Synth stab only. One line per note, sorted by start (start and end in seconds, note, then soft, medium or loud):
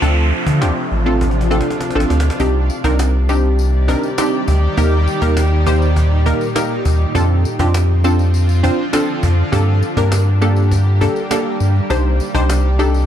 0.02 0.45 C4 medium
0.02 0.45 D4 medium
0.02 0.46 F4 medium
0.02 0.46 A4 loud
0.61 0.94 C4 medium
0.61 0.94 D4 medium
0.61 0.94 F4 medium
0.61 0.94 G4 loud
1.06 1.39 C4 medium
1.06 1.39 D4 medium
1.06 1.39 F4 medium
1.06 1.39 A4 loud
1.50 1.83 C4 medium
1.50 1.83 D4 medium
1.50 1.83 F4 medium
1.50 1.83 A4 loud
1.95 2.28 C4 medium
1.95 2.28 D4 medium
1.95 2.28 F4 medium
1.95 2.28 A4 medium
2.40 2.72 C4 medium
2.40 2.72 D4 medium
2.40 2.72 D#4 medium
2.40 2.73 G4 loud
2.84 3.17 C4 medium
2.84 3.17 D4 medium
2.84 3.17 D#4 medium
2.84 3.17 A#4 loud
3.29 3.72 C4 medium
3.29 3.72 D4 medium
3.29 3.72 D#4 medium
3.29 3.72 G4 medium
3.88 4.10 C4 medium
3.88 4.10 D4 medium
3.88 4.10 D#4 medium
3.88 4.10 A#4 loud
4.18 4.61 C4 medium
4.18 4.62 D4 medium
4.18 4.62 D#4 medium
4.18 4.62 G4 loud
4.77 5.10 A#3 medium
4.77 5.10 D#4 medium
4.77 5.10 G4 medium
4.77 5.10 A#4 loud
5.22 5.54 A#3 medium
5.22 5.54 D#4 medium
5.22 5.55 G4 medium
5.22 5.55 A#4 loud
5.66 6.10 A#3 medium
5.66 6.10 D#4 medium
5.66 6.10 G4 medium
5.66 6.10 C5 loud
6.26 6.48 A#3 medium
6.26 6.48 D#4 medium
6.26 6.48 G4 medium
6.26 6.48 A#4 loud
6.55 6.99 A#3 medium
6.55 6.99 D#4 medium
6.55 6.99 G4 medium
6.55 6.99 A#4 medium
7.15 7.47 C4 medium
7.15 7.47 D4 medium
7.15 7.48 F4 medium
7.15 7.48 A4 medium
7.60 7.92 C4 medium
7.60 7.92 D4 medium
7.60 7.92 F4 medium
7.60 7.92 G4 loud
8.04 8.48 C4 medium
8.04 8.48 D4 medium
8.04 8.48 F4 medium
8.04 8.48 A4 medium
8.63 8.85 C4 medium
8.63 8.85 D4 medium
8.63 8.85 F4 medium
8.63 8.85 C5 loud
8.93 9.36 C4 medium
8.93 9.37 D4 medium
8.93 9.37 F4 medium
8.93 9.37 A4 loud
9.52 9.85 A#3 medium
9.52 9.85 D4 medium
9.52 9.85 G4 medium
9.52 9.85 A4 loud
9.97 10.30 A#3 medium
9.97 10.30 D4 medium
9.97 10.30 G4 medium
9.97 10.30 A#4 loud
10.42 10.85 A#3 medium
10.42 10.85 D4 medium
10.42 10.85 G4 medium
10.42 10.85 A4 medium
11.01 11.23 A#3 medium
11.01 11.23 D4 medium
11.01 11.23 G4 medium
11.01 11.23 A4 medium
11.31 11.74 A#3 medium
11.31 11.74 D4 medium
11.31 11.74 G4 medium
11.31 11.74 A4 loud
11.90 12.23 D4 medium
11.90 12.23 D#4 medium
11.90 12.23 G4 medium
11.90 12.23 C5 medium
12.34 12.67 D4 medium
12.34 12.67 D#4 medium
12.34 12.67 G4 medium
12.34 12.67 C5 loud
12.79 13.06 D4 medium
12.79 13.06 D#4 medium
12.79 13.06 G4 medium
12.79 13.06 A4 loud